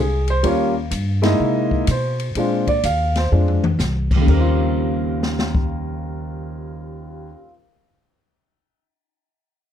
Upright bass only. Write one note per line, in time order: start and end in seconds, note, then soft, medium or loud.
0.00 0.42 C2 medium
0.43 0.90 D#2 medium
0.91 1.38 G2 medium
1.40 1.86 C3 medium
1.88 2.34 B2 medium
2.35 2.82 A#2 medium
2.84 3.30 D#2 medium
3.32 3.78 F2 medium
3.79 4.26 C2 medium
4.27 7.33 D#2 medium